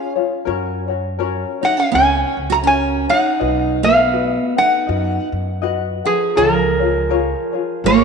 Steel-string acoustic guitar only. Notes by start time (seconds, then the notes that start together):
Already playing: C#4
1.63 D#4
1.77 C#4
1.92 C#4
2.50 F#4
2.64 C#4
3.09 D#4
3.83 B3
4.58 D#4
6.05 F3
6.38 F3
7.86 A#3